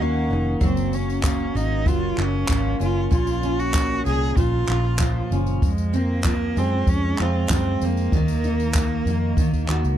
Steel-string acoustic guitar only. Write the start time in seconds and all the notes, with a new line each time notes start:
Already playing: D#3 D#4 F#4
0.00 A#3
0.30 D#4
0.61 F#3
0.93 C#4
1.24 A#3
1.55 A#3
1.86 F#3
2.18 F4
2.49 A#3
2.80 C#4
3.11 A#2
3.43 C#4
4.05 A#3
4.37 A#2
4.70 F4
5.00 F3
5.32 C#4
5.93 C4
6.24 F3
6.57 G#3
7.20 F4
7.50 F3
7.82 C4
8.14 D#3
8.44 D#4
8.76 A#3
9.08 A#3
9.39 D#3
9.70 F#4